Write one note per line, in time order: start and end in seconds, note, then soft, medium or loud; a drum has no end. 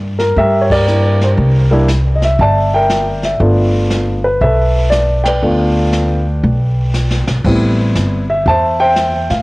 0.00 0.34 G2 medium
0.19 0.37 A#4 medium
0.19 snare soft
0.36 1.34 G2 medium
0.36 0.71 G4 medium
0.36 0.70 A#4 medium
0.36 0.62 E5 medium
0.36 brush sweep soft
0.36 kick soft
0.61 0.71 C#5 medium
0.70 1.69 G4 medium
0.70 1.68 A#4 medium
0.70 1.18 D5 loud
0.70 kick medium
0.70 ride medium
0.87 1.65 G3 soft
0.87 1.65 A#3 soft
0.87 1.65 D4 soft
0.87 1.66 E4 medium
0.87 hi-hat pedal medium
1.21 1.29 C5 medium
1.21 snare soft
1.38 2.35 C2 medium
1.38 brush sweep soft
1.38 kick soft
1.71 1.87 G3 medium
1.71 1.87 A#3 medium
1.71 1.87 D4 medium
1.71 1.87 E4 medium
1.88 snare medium
1.88 hi-hat pedal medium
2.15 2.23 D#5 medium
2.22 2.41 E5 medium
2.22 snare soft
2.39 3.36 G1 medium
2.39 3.38 D5 medium
2.39 2.74 E5 medium
2.39 2.75 A5 medium
2.39 brush sweep soft
2.39 kick soft
2.74 3.38 A#4 medium
2.74 3.23 E5 medium
2.74 3.26 G5 medium
2.90 snare medium
2.90 hi-hat pedal medium
3.23 3.40 E5 medium
3.23 snare soft
3.40 4.37 G1 medium
3.40 4.17 A3 medium
3.40 4.18 B3 medium
3.40 4.18 D4 medium
3.40 4.18 F4 medium
3.40 brush sweep soft
3.40 kick soft
3.90 snare medium
3.90 hi-hat pedal medium
4.24 4.42 B4 medium
4.41 5.39 B1 medium
4.41 5.40 A4 medium
4.41 5.26 B4 medium
4.41 4.94 E5 medium
4.41 brush sweep soft
4.41 kick soft
4.90 5.26 D5 medium
4.90 snare medium
4.90 hi-hat pedal medium
5.24 7.25 B4 medium
5.24 7.25 D5 medium
5.24 7.23 G5 medium
5.24 snare medium
5.24 ride medium
5.42 6.40 D2 medium
5.42 6.20 A3 medium
5.42 6.21 B3 medium
5.42 6.21 D4 medium
5.42 6.21 F4 medium
5.42 brush sweep soft
5.93 snare medium
5.93 hi-hat pedal medium
6.44 7.24 B1 medium
6.44 brush sweep soft
6.44 kick soft
6.94 snare soft
6.94 hi-hat pedal medium
7.11 snare medium
7.28 7.44 B1 medium
7.28 snare medium
7.44 7.92 A1 medium
7.44 8.23 G3 medium
7.44 8.23 B3 medium
7.44 8.23 C4 medium
7.44 8.24 E4 medium
7.44 brush sweep soft
7.44 kick medium
7.44 crash medium
7.95 8.43 G1 medium
7.95 snare medium
7.95 hi-hat pedal medium
8.30 8.47 E5 medium
8.46 9.26 E2 medium
8.46 8.80 C5 medium
8.46 8.80 E5 medium
8.46 8.78 A5 medium
8.46 brush sweep soft
8.46 kick soft
8.80 9.42 C5 medium
8.80 9.42 E5 medium
8.80 9.27 G5 loud
8.96 snare medium
8.96 hi-hat pedal medium
9.30 9.42 A2 medium
9.30 9.42 F5 medium
9.30 snare soft